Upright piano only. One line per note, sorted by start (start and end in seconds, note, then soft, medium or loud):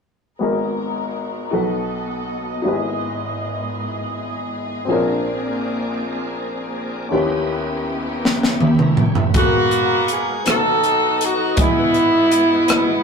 0.39 1.49 G#1 soft
0.39 1.49 G#2 soft
0.39 1.52 B3 soft
0.39 1.50 F#4 soft
0.39 1.53 G#4 soft
0.39 1.54 A#4 soft
1.51 2.61 B1 soft
1.51 2.61 B2 soft
1.51 2.61 D#4 soft
1.51 2.64 F#4 soft
1.51 2.65 A4 soft
1.51 2.65 B4 medium
2.62 4.84 G#1 soft
2.62 4.84 G#2 soft
2.62 4.83 D#4 soft
2.62 4.84 E4 soft
2.62 2.72 G4 soft
2.68 4.86 B4 medium
2.72 4.88 G#4 soft
4.85 7.08 A#1 soft
4.85 7.08 A#2 soft
4.85 7.06 C4 medium
4.85 4.94 C#4 soft
4.89 7.08 G#4 soft
4.89 7.09 A#4 medium
4.94 7.10 D4 soft
7.09 9.31 D#2 medium
7.09 9.31 D#3 medium
7.09 9.29 C#4 medium
7.09 9.30 E4 soft
7.13 9.31 G4 soft
7.13 9.32 B4 medium
9.34 10.42 G#2 soft
9.34 10.39 B2 medium
9.34 10.39 F#4 soft
9.34 10.40 G#4 soft
9.34 9.42 A4 soft
9.43 10.43 A#4 medium
10.45 11.54 B2 soft
10.45 11.50 B3 soft
10.45 11.51 D#4 soft
10.45 11.51 F#4 soft
10.45 11.52 A4 soft
11.56 12.65 G#2 soft
11.56 12.61 B3 medium
11.56 12.62 E4 medium
11.56 12.63 G#4 medium
11.56 12.62 D#5 soft
12.68 13.03 B3 medium
12.68 13.03 E4 medium
12.68 13.03 B4 medium
12.68 13.03 D#5 medium